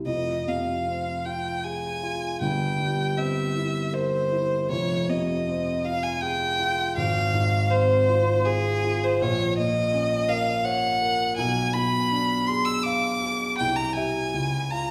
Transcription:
0.05 grand piano F1 F2, violin D#5
0.47 grand piano C3, violin F5
0.88 grand piano C4
1.26 grand piano F4, violin G5
1.64 grand piano G#4, violin G#5
2.03 grand piano F4
2.41 grand piano G1 G2, violin G5
2.80 grand piano G3
3.17 grand piano C4, violin E5
3.55 grand piano E4
3.93 grand piano A#4, violin C5
4.32 grand piano E4
4.69 grand piano F1 F2, violin C#5
5.09 grand piano C3, violin D#5
5.48 grand piano C4
5.84 grand piano F4, violin F5
6.03 violin G#5
6.21 grand piano G#4, violin G5
6.59 grand piano F4
6.97 grand piano G#1, violin F5
7.34 grand piano G#2
7.70 grand piano C4, violin C5
8.08 grand piano F4
8.46 violin G#4, grand piano G#4
8.84 grand piano F4
9.04 violin C5
9.22 grand piano A#1, violin C#5
9.58 grand piano A#2, violin D#5
9.94 grand piano C#4
10.29 grand piano A#4, violin F5
10.65 grand piano C#5, violin F#5
11.02 grand piano A#4
11.37 grand piano B1, violin G#5
11.74 grand piano B2, violin B5
12.12 grand piano D4
12.47 grand piano G#4, violin C6
12.65 violin E6
12.83 grand piano F5, violin D6
13.23 grand piano G#4
13.58 grand piano C2, violin G5
13.76 violin A#5
13.94 grand piano G4 E5, violin G#5
14.33 grand piano C#2
14.71 grand piano F4 F5, violin A#5

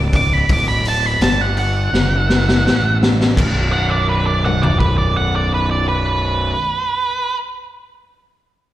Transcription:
Already playing: fingered electric bass C#1, tonewheel organ B3 A4 D5
0.13 lead electric guitar D6, kick, open hi-hat
0.33 lead electric guitar B5
0.49 fingered electric bass D1, tonewheel organ B3 A4 D5, lead electric guitar D6, kick, open hi-hat
0.68 lead electric guitar B5
0.85 lead electric guitar A5, open hi-hat
1.06 lead electric guitar B5
1.21 fingered electric bass G1, lead electric guitar A5, snare, open hi-hat
1.41 lead electric guitar F#5
1.57 lead electric guitar F#5, open hi-hat
1.92 fingered electric bass F#1, tonewheel organ B3 A#4 F5, snare
2.16 tonewheel organ A#3 A4 E5
2.30 snare
2.49 snare
2.65 fingered electric bass A1, snare
3.03 snare
3.21 snare
3.35 fingered electric bass B0, tonewheel organ B3 A4 D5, kick, crash
3.72 lead electric guitar F#5
3.90 lead electric guitar D5
4.09 lead electric guitar B4
4.26 lead electric guitar D5
4.44 lead electric guitar F#5, mid tom
4.63 lead electric guitar D5, floor tom
4.79 lead electric guitar B4, kick
4.98 lead electric guitar D5
5.16 lead electric guitar F#5
5.36 lead electric guitar D5
5.54 lead electric guitar B4
5.71 lead electric guitar D5
5.88 lead electric guitar B4

